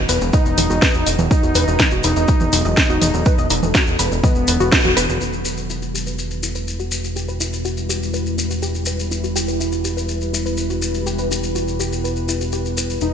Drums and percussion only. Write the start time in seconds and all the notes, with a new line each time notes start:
0.09 open hi-hat, maracas
0.21 maracas
0.33 kick, maracas
0.46 maracas
0.58 open hi-hat, low conga, maracas
0.70 maracas
0.82 kick, snare, maracas
0.94 maracas
1.07 open hi-hat, maracas
1.19 low conga, maracas
1.31 kick, maracas
1.43 maracas
1.55 open hi-hat, maracas
1.68 maracas
1.80 kick, snare, low conga, maracas
1.91 maracas
2.04 open hi-hat, maracas
2.16 maracas
2.28 kick, maracas
2.40 low conga, maracas
2.53 open hi-hat, maracas
2.65 maracas
2.77 kick, snare, maracas
2.90 maracas
3.02 open hi-hat, low conga, maracas
3.14 maracas
3.26 kick, maracas
3.38 maracas
3.50 open hi-hat, maracas
3.63 low conga, maracas
3.74 kick, snare, maracas
3.87 maracas
3.99 open hi-hat, maracas
4.12 maracas
4.24 kick, low conga, maracas
4.35 maracas
4.47 open hi-hat, maracas
4.60 maracas
4.72 kick, snare, maracas
4.84 low conga, maracas
4.97 open hi-hat, maracas
5.09 maracas
5.21 maracas
5.33 maracas
5.45 maracas
5.57 maracas
5.70 maracas
5.82 maracas
5.95 maracas
6.07 maracas
6.19 maracas
6.31 maracas
6.43 maracas
6.55 maracas
6.68 maracas
6.80 maracas
6.91 maracas
7.04 maracas
7.16 maracas
7.29 maracas
7.41 maracas
7.53 maracas
7.65 maracas
7.77 maracas
7.90 maracas
8.03 maracas
8.14 maracas
8.26 maracas
8.38 maracas
8.51 maracas
8.62 maracas
8.75 maracas
8.86 maracas
9.00 maracas
9.12 maracas
9.24 maracas
9.36 maracas
9.48 maracas
9.61 maracas
9.72 maracas
9.85 maracas
9.98 maracas
10.09 maracas
10.21 maracas
10.34 maracas
10.46 maracas
10.57 maracas
10.70 maracas
10.82 maracas
10.94 maracas
11.07 maracas
11.19 maracas
11.31 maracas
11.43 maracas
11.55 maracas
11.68 maracas
11.80 maracas
11.93 maracas
12.05 maracas
12.16 maracas
12.28 maracas
12.41 maracas
12.52 maracas
12.65 maracas
12.77 maracas
12.90 maracas
13.01 maracas